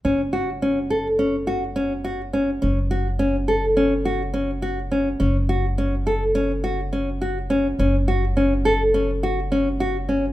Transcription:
<<
  \new Staff \with { instrumentName = "Nylon-string guitar" } { \time 9/8 \key fis \minor \tempo 4. = 70 cis'8 fis'8 cis'8 a'8 cis'8 fis'8 cis'8 fis'8 cis'8 | cis'8 fis'8 cis'8 a'8 cis'8 fis'8 cis'8 fis'8 cis'8 | cis'8 fis'8 cis'8 a'8 cis'8 fis'8 cis'8 fis'8 cis'8 | cis'8 fis'8 cis'8 a'8 cis'8 fis'8 cis'8 fis'8 cis'8 | }
  \new Staff \with { instrumentName = "Upright bass" } { \clef bass \time 9/8 \key fis \minor fis,,1~ fis,,8 | fis,,1~ fis,,8 | fis,,1~ fis,,8 | fis,,1~ fis,,8 | }
>>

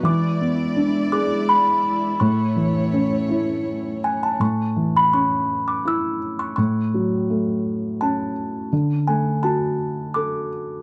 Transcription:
<<
  \new Staff \with { instrumentName = "Music box" } { \time 3/4 \key a \major \tempo 4 = 83 d'''4. d'''8 b''4 | cis'''2 r8 gis''16 a''16 | cis'''8. b''16 cis'''8. d'''16 e'''8. cis'''16 | cis'''2 a''8. r16 |
r8 gis''8 a''4 d'''4 | }
  \new Staff \with { instrumentName = "String section" } { \time 3/4 \key a \major << { <gis d''>2. | <a cis''>2. | r2. | r2. |
r2. | } \\ { e'2.~ | e'2. | r2. | r2. |
r2. | } >> }
  \new Staff \with { instrumentName = "Felt piano" } { \time 3/4 \key a \major e8 b8 d'8 gis'4. | a,8 e8 cis'8 e'4. | a,8 e8 cis'4 e'4 | a,8 fis8 a4 cis'4 |
d8 a8 fis'4 a'4 | }
>>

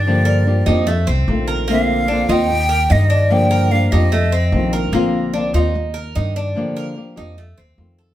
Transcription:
<<
  \new Staff \with { instrumentName = "Flute" } { \time 4/4 \key bes \major \tempo 4 = 147 d''4. r2 r8 | f''4. g''4. ees''4 | g''4 f''8 ees''2 r8 | r1 |
r1 | }
  \new Staff \with { instrumentName = "Cuban tres" } { \time 4/4 \key bes \major d'8 bes'4 ees'8 a8 c'4 bes'8 | bes4 d'8 ees'4 bes'8 ees'8 d'8~ | d'8 bes'4 ees'8 a8 c'4 bes'8 | bes4 d'8 ees'4 bes'8 ees'8 d'8~ |
d'8 bes'4 ees'8 a8 c'4 a'8 | }
  \new Staff \with { instrumentName = "Nylon-string guitar" } { \time 4/4 \key bes \major <d f bes d' g'>4 <f bes d' g'>8 <f bes d' g'>8 r4 <ees a c' f'>4 | <d bes c' f'>4 <d bes c' f'>8 <bes c' f'>8 r4 <ees g g'>4 | <d f bes d' g'>4 <f bes d' g'>8 <f bes d' g'>8 r4 <ees a c' f'>4 | <d bes c' f'>4 <d bes c' f'>8 <bes c' f'>8 r4 <ees g d' g'>4 |
<d f bes d' g'>4 <f bes d' g'>8 <f bes d' g'>8 r4 <ees a c' f'>4 | }
  \new Staff \with { instrumentName = "Upright bass" } { \clef bass \time 4/4 \key bes \major g,4. f,4 c,8 bes,,4~ | bes,,4. ees,4. g,4~ | g,4. f,4. bes,,4 | bes,,4. ees,4. g,4 |
r4. f,4 ees,8 f,4 | }
>>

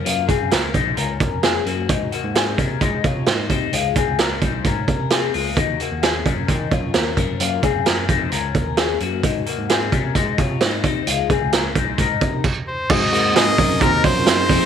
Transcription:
<<
  \new Staff \with { instrumentName = "Trumpet" } { \time 4/4 \key aes \mixolydian \tempo 4 = 131 r1 | r1 | r1 | r1 |
r1 | r1 | r2. r8 c''8 | ees''4 ees''4 bes'8 c''4. | }
  \new Staff \with { instrumentName = "Clean electric guitar" } { \time 4/4 \key aes \mixolydian <bes f'>8 <c' aes'>8 <des' bes'>8 <ees' c''>8 <des' bes'>4 <des' aes'>8 <bes ges'>8 | <ges ees'>8 <bes ges'>8 <c' aes'>8 <des' bes'>8 <ees' c''>8 <f' des''>8 <ees' c''>8 <ees' c''>8 | <aes f'>8 <c' aes'>8 <des' bes'>8 <ees' c''>8 <des' bes'>4 <c' aes'>8 <aes f'>8 | <ges ees'>8 <bes ges'>8 <des' aes'>8 <des' bes'>8 <ees' c''>8 <f' des''>8 <des' bes'>8 <des' bes'>8 |
<bes f'>8 <c' aes'>8 <des' bes'>8 <ees' c''>8 <des' bes'>4 <des' aes'>8 <bes ges'>8 | <ges ees'>8 <bes ges'>8 <c' aes'>8 <des' bes'>8 <ees' c''>8 <f' des''>8 <ees' c''>8 <ees' c''>8 | <aes f'>8 <c' aes'>8 <des' bes'>8 <ees' c''>8 <ees' bes'>4 r4 | <ges ees'>8 <bes ges'>8 <c' aes'>8 <des' bes'>8 <ees' c''>8 <f' des''>8 <ees' c''>8 <ees' c''>8 | }
  \new Staff \with { instrumentName = "Reed electric piano" } { \time 4/4 \key aes \mixolydian r1 | r1 | r1 | r1 |
r1 | r1 | r1 | <c' ees' ges' aes'>4 <c' ees' ges' bes'>8 <c' ees' ges' bes'>8 <c' ees' ges' bes'>4 <c' ees' ges' aes'>8 <c' ees' f' aes'>8 | }
  \new Staff \with { instrumentName = "Tine electric piano" } { \clef bass \time 4/4 \key aes \mixolydian ges,8 r16 ges,16 des,8 bes,,8 des,8 f,4 ges,8 | aes,8 r16 aes,8. c8 aes8 c8 aes,8 c8 | des,8 r16 des,8. c,8 aes,8 c4 des,8 | ees,8 r16 ees,8. ges,8 ees8 ges,8 ees,8 ges,8 |
ges,8 r16 ges,8. f,8 des,8 ees,4 ges,8 | aes,8 r16 aes,8. c8 aes8 c8 aes,8 c8 | des,8 r16 des,8. c,8 aes,8 c8 r4 | aes,8 aes,4 ges,8 ees,8 ges,4 f,8 | }
  \new DrumStaff \with { instrumentName = "Drums" } \drummode { \time 4/4 hh8 <hh bd>8 <hh sn>8 <hh bd>8 hh8 <hh bd>8 <hh sn>8 hh8 | <hh bd>8 hh8 <hh sn>8 <hh bd>8 <hh bd>8 <hh bd>8 <hh sn>8 <hh bd>8 | hh8 <hh bd>8 <hh sn>8 <hh bd>8 <hh bd>8 <hh bd>8 <hh sn>8 hho8 | <hh bd>8 hh8 <hh sn>8 <hh bd>8 <hh bd>8 <hh bd>8 <hh sn>8 <hh bd>8 |
hh8 <hh bd>8 <hh sn>8 <hh bd>8 hh8 <hh bd>8 <hh sn>8 hh8 | <hh bd>8 hh8 <hh sn>8 <hh bd>8 <hh bd>8 <hh bd>8 <hh sn>8 <hh bd>8 | hh8 <hh bd>8 <hh sn>8 <hh bd>8 <hh bd>8 <hh bd>8 <cymc bd>4 | <cymc bd>8 <hho hhp>8 <hho hhp sn>8 <hho hhp bd>8 <hho hhp bd>8 <hho hhp bd>8 <hho hhp sn>8 <hho hhp bd>8 | }
>>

